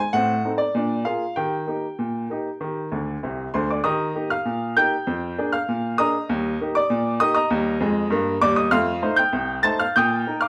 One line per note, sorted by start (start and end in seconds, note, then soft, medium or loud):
0.00 0.14 G#5 medium
0.13 0.40 A2 medium
0.13 0.32 C4 soft
0.13 0.50 F#5 medium
0.45 0.62 C4 soft
0.45 0.62 D#4 soft
0.45 0.63 A4 soft
0.58 1.03 D5 medium
0.75 1.02 A#2 medium
0.75 0.93 D4 soft
1.05 1.23 A#3 soft
1.05 1.23 F4 soft
1.05 1.24 G#4 soft
1.05 1.35 F5 medium
1.36 1.64 D#3 medium
1.36 1.56 G4 soft
1.36 3.50 G5 medium
1.67 1.85 A#3 soft
1.67 1.85 D#4 soft
1.67 1.86 G4 soft
1.99 2.26 A#2 medium
2.30 2.47 A#3 soft
2.30 2.48 D#4 soft
2.30 2.48 G4 soft
2.61 2.88 D#3 medium
2.61 2.80 G4 soft
2.92 3.15 D2 medium
2.92 3.16 D3 medium
3.23 3.47 C2 soft
3.23 3.47 C3 medium
3.54 3.78 D2 medium
3.54 3.78 D3 medium
3.54 3.69 C5 soft
3.54 3.70 C6 medium
3.70 3.85 D5 soft
3.70 3.86 D6 medium
3.84 4.11 D#3 medium
3.84 4.03 G4 soft
3.84 4.28 D#5 medium
3.84 4.28 A#5 medium
3.84 4.28 D#6 medium
4.16 4.33 A#3 soft
4.16 4.33 D#4 soft
4.16 4.33 G4 soft
4.30 4.74 F5 medium
4.30 4.68 F6 medium
4.45 4.72 A#2 medium
4.76 4.94 A#3 soft
4.76 4.94 D#4 soft
4.76 4.94 G4 soft
4.76 5.50 G5 medium
4.76 5.38 G6 medium
5.07 5.33 F2 medium
5.38 5.55 A#3 soft
5.38 5.55 D4 soft
5.38 5.56 G#4 soft
5.53 5.96 F5 medium
5.53 5.97 F6 medium
5.69 5.95 A#2 medium
5.98 6.16 A#3 medium
5.98 6.16 D4 soft
5.98 6.16 G#4 soft
5.98 6.72 D#5 medium
5.98 6.72 A#5 medium
5.98 6.71 D#6 loud
6.29 6.56 D#2 medium
6.29 6.48 G3 medium
6.61 6.78 A#3 medium
6.61 6.78 D#4 soft
6.61 6.78 G4 medium
6.75 7.19 D5 medium
6.75 7.12 D6 medium
6.90 7.16 A#2 medium
7.20 7.38 A#3 medium
7.20 7.38 D#4 medium
7.20 7.38 G4 medium
7.20 7.34 D#5 medium
7.20 7.33 D#6 loud
7.35 8.39 D#5 medium
7.35 8.39 A#5 medium
7.35 8.21 D#6 medium
7.50 7.75 D#2 medium
7.50 7.76 G3 medium
7.80 8.06 F2 medium
7.80 8.07 G#3 medium
8.10 8.36 G2 medium
8.10 8.37 A#3 medium
8.41 8.67 D#2 medium
8.41 8.68 G3 medium
8.41 8.57 D5 medium
8.41 8.58 D6 loud
8.56 8.73 D#5 medium
8.56 8.73 D#6 medium
8.71 8.98 F2 medium
8.71 8.90 A3 medium
8.71 9.15 F5 medium
8.71 9.15 C6 medium
8.71 9.09 F6 loud
9.03 9.20 A3 medium
9.03 9.20 D#4 medium
9.03 9.20 C5 medium
9.16 9.61 G5 medium
9.16 9.54 G6 medium
9.33 9.60 C2 medium
9.63 9.81 A3 soft
9.63 9.81 D#4 soft
9.63 9.82 C5 medium
9.63 9.79 A5 medium
9.63 9.80 A6 loud
9.79 9.95 F5 medium
9.79 9.95 F6 medium
9.96 10.22 A#2 medium
9.96 10.39 G5 medium
9.96 10.39 D#6 medium
9.96 10.33 G6 medium
10.27 10.44 A#3 soft
10.27 10.44 D#4 soft
10.27 10.44 A#4 soft
10.41 10.48 F5 medium
10.41 10.48 D6 medium
10.41 10.48 F6 medium